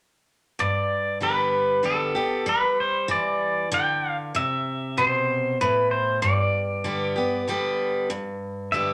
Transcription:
0.59 steel-string acoustic guitar G2, pedal steel guitar D5
1.20 steel-string acoustic guitar D3 G3 B3 G4, pedal steel guitar B4
1.83 steel-string acoustic guitar D3 G3 B3 G4, pedal steel guitar A4
2.15 steel-string acoustic guitar B3 G4
2.46 steel-string acoustic guitar G3, pedal steel guitar B4
2.80 pedal steel guitar C5
3.08 steel-string acoustic guitar E3, pedal steel guitar D5
3.72 steel-string acoustic guitar D3, pedal steel guitar G5
4.35 steel-string acoustic guitar C3, pedal steel guitar E5
4.97 steel-string acoustic guitar B2, pedal steel guitar C5
5.61 steel-string acoustic guitar A2, pedal steel guitar B4
5.91 pedal steel guitar C5
6.22 steel-string acoustic guitar G2, pedal steel guitar D5
6.84 steel-string acoustic guitar D3 G3 B3 G4
7.16 steel-string acoustic guitar B3 G4
7.48 steel-string acoustic guitar D3 G3 B3 G4
8.10 steel-string acoustic guitar G2
8.72 steel-string acoustic guitar D3 G3 B3 G4, pedal steel guitar E5

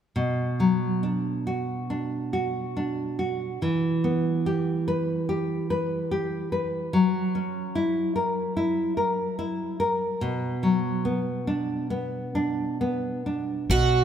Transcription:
0.16 nylon-string guitar B2
0.60 nylon-string guitar F#3
1.03 nylon-string guitar D4
1.47 nylon-string guitar F#4
1.90 nylon-string guitar D4
2.33 nylon-string guitar F#4
2.77 nylon-string guitar D4
3.19 nylon-string guitar F#4
3.62 nylon-string guitar E3
4.04 nylon-string guitar B3
4.46 nylon-string guitar G4
4.88 nylon-string guitar B4
5.29 nylon-string guitar G4
5.70 nylon-string guitar B4
6.11 nylon-string guitar G4
6.52 nylon-string guitar B4
6.93 nylon-string guitar F#3
7.35 nylon-string guitar C#4
7.75 nylon-string guitar E4
8.16 nylon-string guitar A#4
8.57 nylon-string guitar E4
8.97 nylon-string guitar A#4
9.39 nylon-string guitar E4
9.80 nylon-string guitar A#4
10.21 nylon-string guitar B2
10.63 nylon-string guitar F#3
11.05 nylon-string guitar B3
11.47 nylon-string guitar D4
11.90 nylon-string guitar B3
12.35 nylon-string guitar D4
12.81 nylon-string guitar B3
13.26 nylon-string guitar D4
13.70 upright bass B1, nylon-string guitar B2, twelve-string acoustic guitar F#4

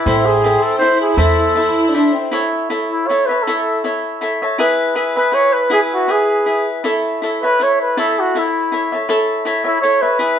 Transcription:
Already playing: trumpet E4
0.06 upright bass A1, violin section C4, cavaquinho E4 A4 C5 E5
0.25 trumpet G#4
0.44 cavaquinho E4 A4 C5 E5
0.63 trumpet A4
0.78 violin section E4, cavaquinho E4 A4 C5 E5, trumpet C5
1.01 trumpet G#4
1.17 upright bass E2, cavaquinho E4 A4 C5 E5, trumpet A4
1.55 cavaquinho E4 A4 C5 E5, violin section E4
1.94 violin section D4, cavaquinho E4 A4 C5 E5
2.15 violin section C4
2.32 cavaquinho E4 A4 C#5 E5
2.70 cavaquinho E4 A4 C#5 E5
2.91 trumpet E4
3.07 cavaquinho E4 A4 C#5 E5, trumpet C#5
3.26 trumpet B4, cavaquinho E5
3.31 cavaquinho A4 C#5
3.43 trumpet A4
3.47 cavaquinho E4 A4 C#5 E5
3.84 cavaquinho E4 A4 C#5 E5
4.21 cavaquinho E4 A4 C#5 E5
4.42 cavaquinho A4 C#5 E5
4.58 cavaquinho E4 G#4 B4 E5
4.95 cavaquinho E4 G#4 B4 E5
5.16 cavaquinho G#4 B4 E5, trumpet B4
5.32 cavaquinho E4 G#4 B4 E5, trumpet C#5
5.53 trumpet B4
5.70 cavaquinho E4 G#4 B4 E5, trumpet G#4
5.94 trumpet F#4
6.08 cavaquinho E4 G#4 B4 E5, trumpet G#4
6.46 cavaquinho E4 G#4 B4 E5
6.84 cavaquinho E4 A4 C#5 E5
7.22 cavaquinho E4 A4 C#5 E5
7.43 cavaquinho A4 C#5 E5, trumpet B4
7.59 cavaquinho E4 A4 C#5 E5, trumpet C#5
7.82 trumpet B4
7.97 cavaquinho E4 A4 C#5 E5, trumpet A4
8.20 trumpet F#4
8.35 cavaquinho E4 A4 C#5 E5, trumpet E4
8.72 cavaquinho E4 A4 C#5 E5
8.92 cavaquinho A4 C#5 E5
9.09 cavaquinho E4 A4 C#5 E5
9.45 cavaquinho E4 A4 C#5 E5
9.64 trumpet E4, cavaquinho A4 C#5 E5
9.82 cavaquinho E4 A4 C#5 E5, trumpet C#5
10.02 cavaquinho A4 C#5 E5, trumpet B4
10.19 cavaquinho E4 G#4 B4 E5

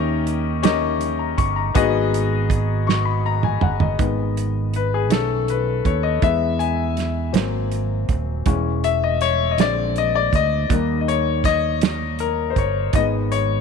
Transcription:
Already playing: fingered electric bass D#2, grand piano D#3 C#4 G4 A#4 D#5
0.27 closed hi-hat
0.63 grand piano C#4 G4 A#4 D#5, snare, closed hi-hat
1.01 closed hi-hat
1.19 grand piano A#5
1.38 fingered electric bass G1, grand piano C#6, kick, closed hi-hat
1.56 grand piano A#5
1.75 fingered electric bass G#1, grand piano G#2 B3 F#4 G#4 D#5, kick, closed hi-hat
2.14 closed hi-hat
2.50 kick, closed hi-hat
2.87 grand piano C#6, snare
3.05 grand piano B5
3.26 grand piano A#5
3.43 grand piano G#5, mid tom
3.61 fingered electric bass G1, grand piano F#5, floor tom
3.80 grand piano D#5, floor tom
3.98 fingered electric bass G#1, grand piano D#3 G#3 B3, kick, closed hi-hat
4.37 closed hi-hat
4.74 grand piano B4, closed hi-hat
4.94 grand piano G#4
5.09 fingered electric bass B1, grand piano D#3 A3 C#4 A4, snare, closed hi-hat
5.48 grand piano B4, closed hi-hat
5.85 fingered electric bass D#2, grand piano C#5, kick, closed hi-hat
6.03 grand piano D#5
6.22 fingered electric bass E2, grand piano E3 G#3 B3 E5, kick, closed hi-hat
6.59 grand piano G#5, closed hi-hat
6.97 snare, closed hi-hat
7.32 fingered electric bass G#1, grand piano F#3 A#3 C4, snare, closed hi-hat
7.72 closed hi-hat
8.09 fingered electric bass D#1, kick, closed hi-hat
8.46 fingered electric bass E1, grand piano E3 G#3 C#4, kick, closed hi-hat
8.84 grand piano E5, closed hi-hat
9.04 grand piano D#5
9.21 grand piano C#5, closed hi-hat
9.51 grand piano D#5
9.58 fingered electric bass A#1, grand piano D3 G#3 C4 D5, snare, closed hi-hat
9.96 grand piano D#5, closed hi-hat
10.15 grand piano D5
10.33 fingered electric bass D2, grand piano D#5, kick, closed hi-hat
10.69 fingered electric bass D#2, grand piano D#3 G3 A#3, kick, closed hi-hat
11.01 grand piano D#5
11.08 grand piano C#5, closed hi-hat
11.44 grand piano D#5, kick, snare, closed hi-hat
11.81 snare, closed hi-hat
12.19 grand piano A#4, closed hi-hat
12.50 grand piano C5
12.56 fingered electric bass G1, grand piano C#5, kick, closed hi-hat
12.93 fingered electric bass G#1, grand piano D#3 G#3 B3 D#5, kick, closed hi-hat
13.32 grand piano C#5, closed hi-hat

